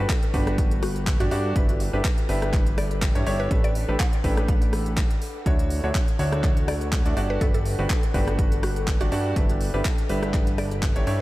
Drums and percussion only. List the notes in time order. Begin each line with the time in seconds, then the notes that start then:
0.09 kick, clap, closed hi-hat
0.23 closed hi-hat
0.34 kick, open hi-hat
0.47 cross-stick, closed hi-hat
0.58 kick, closed hi-hat
0.71 closed hi-hat
0.83 cross-stick, open hi-hat
0.96 closed hi-hat
1.07 kick, clap, closed hi-hat
1.20 closed hi-hat
1.31 open hi-hat
1.56 kick, closed hi-hat
1.69 closed hi-hat
1.80 open hi-hat
2.05 kick, clap, closed hi-hat
2.18 closed hi-hat
2.29 open hi-hat
2.42 cross-stick, closed hi-hat
2.53 kick, clap, closed hi-hat
2.67 closed hi-hat
2.78 cross-stick, open hi-hat
2.91 closed hi-hat
3.02 kick, clap, closed hi-hat
3.15 closed hi-hat
3.27 open hi-hat
3.51 kick, closed hi-hat
3.64 closed hi-hat
3.75 open hi-hat
4.00 kick, clap, closed hi-hat
4.13 closed hi-hat
4.24 kick, open hi-hat
4.37 cross-stick, closed hi-hat
4.48 kick, closed hi-hat
4.62 closed hi-hat
4.73 cross-stick, open hi-hat
4.86 closed hi-hat
4.97 kick, clap, closed hi-hat
5.11 closed hi-hat
5.22 open hi-hat
5.46 kick, closed hi-hat
5.59 closed hi-hat
5.70 open hi-hat
5.95 kick, clap, closed hi-hat
6.08 closed hi-hat
6.19 open hi-hat
6.32 cross-stick, closed hi-hat
6.44 kick, clap, closed hi-hat
6.57 closed hi-hat
6.68 cross-stick, open hi-hat
6.81 closed hi-hat
6.92 kick, clap, closed hi-hat
7.06 closed hi-hat
7.17 open hi-hat
7.41 kick, closed hi-hat
7.54 closed hi-hat
7.66 open hi-hat
7.90 kick, clap, closed hi-hat
8.03 closed hi-hat
8.14 kick, open hi-hat
8.28 cross-stick, closed hi-hat
8.39 kick, closed hi-hat
8.52 closed hi-hat
8.63 cross-stick, open hi-hat
8.76 closed hi-hat
8.87 kick, clap, closed hi-hat
9.01 closed hi-hat
9.12 open hi-hat
9.36 kick, closed hi-hat
9.49 closed hi-hat
9.61 open hi-hat
9.85 kick, clap, closed hi-hat
9.98 closed hi-hat
10.09 open hi-hat
10.23 cross-stick, closed hi-hat
10.34 kick, clap, closed hi-hat
10.47 closed hi-hat
10.58 cross-stick, open hi-hat
10.71 closed hi-hat
10.83 kick, clap, closed hi-hat
10.96 closed hi-hat
11.07 open hi-hat